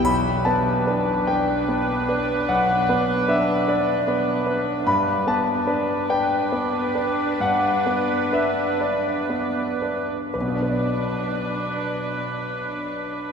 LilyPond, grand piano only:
\new Staff \with { instrumentName = "Grand piano" } { \time 6/8 \key b \minor \tempo 4. = 48 << { b''8 a''4 g''4. | fis''4 e''8 d''4. | b''8 a''4 g''4. | fis''4 e''8 d''4. |
<b,, b, b d' b' d''>2. | } \\ { b,,8 <b b'>8 <d' b'>8 <d' b'>8 <b b'>8 <d' b'>8 | b,,8 <b b'>8 <d' b'>8 <d' b'>8 <b b'>8 <d' b'>8 | g,8 <b b'>8 <d' b'>8 <d' b'>8 <b b'>8 <d' b'>8 | g,8 <b b'>8 <d' b'>8 <d' b'>8 <b b'>8 <d' b'>8 |
r2. | } >> }